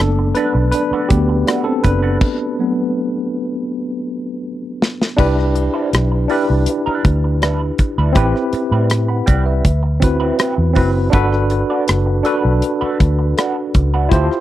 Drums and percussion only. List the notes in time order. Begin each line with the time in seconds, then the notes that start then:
0.00 cross-stick
0.35 closed hi-hat
0.72 closed hi-hat
1.10 kick, closed hi-hat
1.47 cross-stick, closed hi-hat
1.84 kick, closed hi-hat
2.21 kick, crash
4.82 snare
5.02 snare
5.18 kick, crash
5.39 cross-stick
5.55 closed hi-hat
5.93 cross-stick, closed hi-hat
6.30 open hi-hat
6.66 closed hi-hat
7.05 kick, closed hi-hat
7.42 cross-stick, closed hi-hat
7.78 kick, closed hi-hat
8.15 kick, closed hi-hat
8.36 cross-stick
8.53 closed hi-hat
8.90 cross-stick, closed hi-hat
9.27 kick, closed hi-hat
9.65 kick, closed hi-hat
10.02 kick, closed hi-hat
10.39 cross-stick, closed hi-hat
10.75 kick, open hi-hat
11.13 kick, closed hi-hat
11.33 cross-stick
11.50 closed hi-hat
11.88 cross-stick, closed hi-hat
12.25 closed hi-hat
12.62 closed hi-hat
13.00 kick, closed hi-hat
13.38 cross-stick, closed hi-hat
13.74 kick, closed hi-hat
14.11 kick, closed hi-hat
14.31 cross-stick